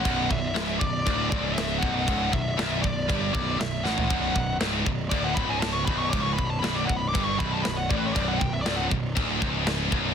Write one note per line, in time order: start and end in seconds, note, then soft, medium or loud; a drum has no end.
0.00 0.52 F#5 loud
0.04 0.29 B0 loud
0.04 0.28 B1 loud
0.04 kick loud
0.04 crash medium
0.29 0.54 B0 medium
0.29 0.50 B1 medium
0.29 0.78 E5 medium
0.29 kick loud
0.54 0.79 C#1 loud
0.54 0.80 C#2 loud
0.54 snare loud
0.54 crash medium
0.79 1.05 B0 medium
0.79 1.01 B1 medium
0.79 1.27 D5 medium
0.79 kick loud
1.06 1.30 D1 medium
1.06 1.31 D2 loud
1.06 kick loud
1.06 crash medium
1.30 1.79 C#1 loud
1.30 1.80 C#2 loud
1.30 1.53 D5 medium
1.30 kick loud
1.54 1.80 E5 medium
1.58 snare loud
1.58 crash medium
1.78 2.06 B1 loud
1.78 2.53 F#5 loud
1.83 2.06 B0 medium
1.83 kick loud
2.07 2.32 C#1 loud
2.07 2.31 C#2 loud
2.07 kick loud
2.07 crash medium
2.32 2.57 B0 medium
2.32 2.53 B1 medium
2.32 2.80 E5 loud
2.32 kick loud
2.57 2.83 B0 loud
2.57 2.82 B1 loud
2.57 snare loud
2.57 crash medium
2.82 3.08 B0 medium
2.82 3.04 B1 medium
2.82 3.30 D5 loud
2.82 kick medium
3.09 3.33 G1 medium
3.09 3.33 G2 loud
3.09 kick loud
3.09 crash medium
3.33 3.58 B0 loud
3.33 3.59 B1 loud
3.33 3.58 D5 medium
3.33 kick loud
3.60 3.84 B0 medium
3.60 3.81 B1 medium
3.60 3.85 E5 medium
3.60 snare loud
3.60 crash medium
3.84 4.09 A1 medium
3.84 4.10 A2 loud
3.84 4.57 F#5 medium
3.84 snare medium
3.98 floor tom loud
4.10 4.34 B0 loud
4.10 4.35 B1 loud
4.10 kick loud
4.10 crash medium
4.36 4.59 B0 medium
4.36 4.56 B1 medium
4.36 kick loud
4.60 4.84 C#1 loud
4.60 4.86 C#2 loud
4.60 snare loud
4.60 crash medium
4.86 5.10 B0 medium
4.86 5.07 B1 medium
4.86 kick medium
5.09 5.35 D1 medium
5.09 5.36 D2 loud
5.09 5.23 D5 medium
5.09 kick loud
5.09 crash medium
5.24 5.37 F#5 medium
5.34 5.84 C#1 loud
5.34 5.87 C#2 loud
5.34 5.48 B5 loud
5.34 kick loud
5.49 5.60 G#5 loud
5.60 5.74 A5 medium
5.60 snare loud
5.60 crash medium
5.72 5.85 C#6 loud
5.85 6.11 B0 medium
5.85 6.12 B1 loud
5.85 5.98 B5 loud
5.85 kick loud
5.98 6.10 C#6 medium
6.10 6.37 C#1 loud
6.10 6.37 C#2 loud
6.10 6.22 D6 loud
6.10 kick loud
6.10 crash medium
6.22 6.33 C#6 medium
6.34 6.48 B5 loud
6.38 6.62 B0 medium
6.38 6.59 B1 medium
6.38 kick loud
6.45 6.61 A5 loud
6.59 6.88 B1 loud
6.59 6.74 B5 loud
6.63 6.87 B0 loud
6.63 snare loud
6.63 crash medium
6.73 6.87 D5 medium
6.85 7.09 B1 medium
6.85 7.00 F#5 medium
6.89 7.13 B0 medium
6.89 kick loud
6.96 7.08 B5 loud
7.08 7.24 D6 loud
7.15 7.38 G1 medium
7.15 7.39 G2 loud
7.15 kick loud
7.15 crash medium
7.24 7.38 C#6 loud
7.39 7.64 B0 loud
7.39 7.63 B1 loud
7.39 7.52 B5 medium
7.39 kick loud
7.51 7.64 A5 medium
7.62 7.89 B0 medium
7.62 7.85 B1 medium
7.62 7.76 B5 loud
7.62 snare loud
7.62 crash medium
7.76 7.89 F#5 loud
7.89 8.14 A1 loud
7.89 8.14 A2 loud
7.89 7.98 D5 medium
7.89 kick loud
7.98 8.07 B4 medium
8.06 8.14 C#5 medium
8.14 8.39 B0 loud
8.14 8.38 B1 loud
8.14 8.27 D5 medium
8.14 kick loud
8.14 crash medium
8.28 8.39 F#5 medium
8.39 8.64 B0 medium
8.39 8.61 B1 medium
8.39 8.52 G5 loud
8.39 kick medium
8.53 8.62 E5 medium
8.62 8.89 C#1 loud
8.62 8.90 C#2 loud
8.62 8.76 D5 medium
8.62 crash medium
8.66 snare loud
8.76 8.84 F#5 loud
8.91 9.15 B0 medium
8.91 9.11 B1 medium
8.91 kick loud
9.15 9.40 D1 medium
9.15 9.39 D2 loud
9.15 kick loud
9.15 crash medium
9.40 9.89 C#1 loud
9.40 9.90 C#2 loud
9.40 kick loud
9.67 snare loud
9.67 crash medium
9.91 10.14 B0 medium
9.91 10.14 B1 loud
9.91 kick loud